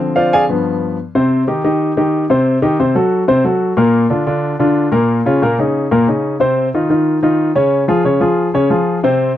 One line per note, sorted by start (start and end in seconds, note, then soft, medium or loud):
0.00 0.45 D3 medium
0.00 0.46 F3 medium
0.00 0.46 C4 medium
0.16 0.32 F4 medium
0.16 0.32 C5 medium
0.16 0.32 D5 medium
0.16 0.32 F5 medium
0.33 0.43 G#4 medium
0.33 0.43 D5 medium
0.33 0.43 F5 medium
0.33 0.43 G#5 loud
0.49 0.96 G2 medium
0.49 0.96 F3 medium
0.49 0.96 B3 medium
1.15 1.42 C3 medium
1.15 1.42 C4 medium
1.15 1.42 C5 medium
1.47 1.61 D#3 medium
1.47 1.61 D#4 medium
1.47 1.61 G4 medium
1.64 1.91 D#3 medium
1.64 1.91 D#4 medium
1.64 1.91 G4 medium
1.97 2.24 D#3 medium
1.97 2.24 D#4 medium
1.97 2.24 G4 medium
2.30 2.57 C3 medium
2.30 2.57 C4 medium
2.30 2.57 C5 medium
2.62 2.76 D#3 medium
2.62 2.76 D#4 medium
2.62 2.76 G4 medium
2.79 2.93 C3 medium
2.79 2.93 C4 medium
2.79 2.93 C5 medium
2.95 3.22 F#3 medium
2.95 3.22 F#4 medium
2.95 3.23 A4 medium
3.28 3.42 C3 medium
3.28 3.42 C4 medium
3.28 3.42 C5 medium
3.44 3.71 F#3 medium
3.44 3.72 F#4 medium
3.44 3.72 A4 medium
3.77 4.04 A#2 medium
3.77 4.04 A#3 medium
3.77 4.04 A#4 medium
4.10 4.24 D3 medium
4.10 4.24 D4 medium
4.10 4.24 F4 medium
4.26 4.53 D3 medium
4.26 4.54 D4 medium
4.26 4.54 F4 medium
4.59 4.87 D3 medium
4.59 4.86 D4 medium
4.59 4.87 F4 medium
4.92 5.19 A#2 medium
4.92 5.19 A#3 medium
4.92 5.19 A#4 medium
5.26 5.39 C#3 medium
5.26 5.39 C#4 medium
5.26 5.39 F4 medium
5.42 5.55 A#2 medium
5.42 5.56 A#3 medium
5.42 5.56 A#4 medium
5.58 5.85 C#3 medium
5.58 5.86 C#4 medium
5.58 5.86 D#4 medium
5.91 6.05 A#2 medium
5.91 6.05 A#3 medium
5.91 6.05 A#4 medium
6.07 6.34 C#3 medium
6.07 6.35 C#4 medium
6.07 6.35 D#4 medium
6.40 6.67 C3 medium
6.40 6.67 C4 medium
6.40 6.68 C5 medium
6.74 6.87 D#3 medium
6.74 6.87 D#4 medium
6.74 6.88 F4 medium
6.90 7.17 D#3 medium
6.90 7.17 D#4 medium
6.90 7.17 F4 medium
7.22 7.49 D#3 medium
7.22 7.50 D#4 medium
7.22 7.50 F4 medium
7.55 7.82 C#3 medium
7.55 7.82 C#4 medium
7.55 7.83 C#5 medium
7.88 8.02 F3 medium
7.88 8.02 F4 medium
7.88 8.02 G#4 medium
8.05 8.18 C#3 medium
8.05 8.18 C#4 medium
8.05 8.18 C#5 medium
8.20 8.48 F3 medium
8.20 8.48 F4 medium
8.20 8.48 G#4 medium
8.54 8.67 C#3 medium
8.54 8.68 C#4 medium
8.54 8.68 C#5 medium
8.70 8.97 F3 medium
8.70 8.97 F4 medium
8.70 8.98 G#4 medium
9.04 9.30 C3 medium
9.04 9.31 C4 medium
9.04 9.31 C5 medium